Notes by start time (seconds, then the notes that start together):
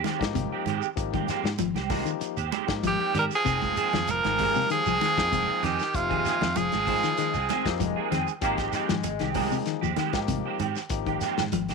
0.04 D#3 G#3 C4 G4, snare, closed hi-hat, high conga
0.19 G#2 F3 A#3 D#4 G4, kick, snare, closed hi-hat, shekere
0.34 G#1 C3, kick, closed hi-hat, high conga, shekere
0.51 G#3 C4 G4, muted fingered electric bass stroke
0.66 G#2 D#3 G#3 C4 G4, closed hi-hat, low conga, shekere
0.82 shekere
0.96 G#1 F3 A#3 D#4 G4, kick, closed hi-hat, shekere
1.13 D#3 G#3 C4 G4, kick, closed hi-hat, high conga
1.28 D#3 G#3 C4 G4, muted fingered electric bass stroke, snare, closed hi-hat, shekere
1.44 G#2, snare, shekere
1.58 G#1 F3, closed hi-hat, high conga, shekere
1.74 C2 G#3 C4 G4, snare, closed hi-hat, high conga
1.90 D#3 F3 G#3 A#3 C4 D#4 G4, muted clean electric guitar stroke, kick, snare, open hi-hat, high conga, low conga, shekere
2.06 D#3, closed hi-hat, shekere
2.21 muted clean electric guitar stroke, closed hi-hat, shekere
2.37 D#2 G#3 C4 G4, closed hi-hat, shekere
2.51 D#3 G#3 C4 G4, closed hi-hat, high conga
2.67 G#2 F3 A#3 D#4 G4, kick, snare, closed hi-hat, shekere
2.83 G#1 D#3 F3, kick, closed hi-hat, high conga, shekere
2.87 G4
2.99 G#3 C4 G4
3.13 G#2 D#3 G3 G#3 C4 G4, closed hi-hat, low conga, shekere
3.19 A#4
3.31 closed hi-hat, shekere
3.35 F3 G#4
3.44 F1 C3 D#3 F3 G#3 A#3 C4 D#4 G#4 G5, kick, closed hi-hat, shekere
3.61 G#3 C4 G#4, kick, closed hi-hat, high conga
3.76 D#3 G#3 C4 G#4, closed hi-hat, shekere
3.93 F2 F3, snare, low conga, shekere
4.07 F1 A#4, closed hi-hat, high conga, shekere
4.12 F3
4.23 G#1 D#3 G#3 C4 G#4, snare, closed hi-hat, high conga
4.38 D#3 F3 G#3 A#3 C4 D#4 G4 G#4, kick, open hi-hat, high conga, low conga, shekere
4.55 C3, high conga, shekere
4.70 D#3 F3 G#4, closed hi-hat, shekere
4.86 C2 F3 G#3 C4 G#4, shekere
5.00 D#3 G#3 C4 G#4, snare, closed hi-hat, high conga
5.17 F2 F3 A#3 D#4 G5, kick, snare, closed hi-hat
5.32 F1 C3, kick, closed hi-hat, high conga, shekere
5.47 G#3 C4 G#4
5.62 F2 D#3 G#3 C4 G4 G#4, snare, closed hi-hat, low conga, shekere
5.79 snare, shekere
5.94 F1 C3 F3 A#3 D#4 F4 G4, kick, closed hi-hat, shekere
6.09 D#3 G#3 C4 G#4, kick, closed hi-hat
6.24 D#3 G#3 C4 G#4, muted fingered electric bass stroke, snare, closed hi-hat, shekere
6.41 F2, snare, low conga, shekere
6.56 F1 F3 G#4, closed hi-hat, high conga, shekere
6.72 G#1 G#3 C4 G#4, snare, closed hi-hat, high conga
6.87 D#3 F3 G#3 A#3 C4 D#4 F4 G#4, kick, open hi-hat, high conga, low conga, shekere
7.03 D#3, snare, closed hi-hat, shekere
7.17 D#3 G#3, closed hi-hat, shekere
7.33 C2 G#3 C4 G#4, closed hi-hat, shekere
7.49 D#3 G#3 C4 G#4, snare, closed hi-hat, high conga
7.66 F2 F3 A#3 D#4 G4, kick, snare, closed hi-hat, shekere
7.80 F1 F3 G#3, kick, closed hi-hat, high conga, shekere
7.96 G#3 A#3 C4 G#4
8.10 F2 D#3 G#3 C4 G#4, snare, closed hi-hat, low conga, shekere
8.28 closed hi-hat, shekere
8.41 G#1 D#3 F3 G#3 A#3 C4 D#4 G4, muted clean electric guitar stroke, kick, closed hi-hat, shekere
8.58 G#3 C4 G4, kick, snare, closed hi-hat
8.72 D#3 G#3 C4 G4, muted fingered electric bass stroke, snare, closed hi-hat, shekere
8.89 G#2 F3, snare, low conga, shekere
9.03 G#1, closed hi-hat, high conga, shekere
9.19 C2 D#3 C4 G4, snare, closed hi-hat
9.34 D#3 F3 G#3 A#3 C4 D#4 G4 G#4, kick, open hi-hat, high conga, low conga, shekere
9.51 C3, high conga, shekere
9.66 D#3, snare, closed hi-hat, shekere
9.81 D#2 F3 G#3 C4 G4, shekere
9.96 D#3 G#3 C4 G4, snare, closed hi-hat, high conga
10.13 G#2 F3 A#3 D#4 G4, kick, snare, closed hi-hat
10.28 G#1 C3, kick, closed hi-hat, high conga, shekere
10.45 G#3 C4 G4, muted fingered electric bass stroke
10.59 G#2 D#3 C4 G4, muted clean electric guitar stroke, closed hi-hat, low conga, shekere
10.76 snare, shekere
10.89 G#1 F3 A#3 D#4 G4, kick, closed hi-hat, shekere
11.06 D#3 G#3 G4, muted clean electric guitar stroke, kick, closed hi-hat
11.21 D#3 G#3 C4 G4, muted fingered electric bass stroke, snare, closed hi-hat, shekere
11.38 G#2, snare, low conga
11.52 G#1 F3, closed hi-hat, high conga, shekere
11.68 C2 G#3 C4 G4, snare, closed hi-hat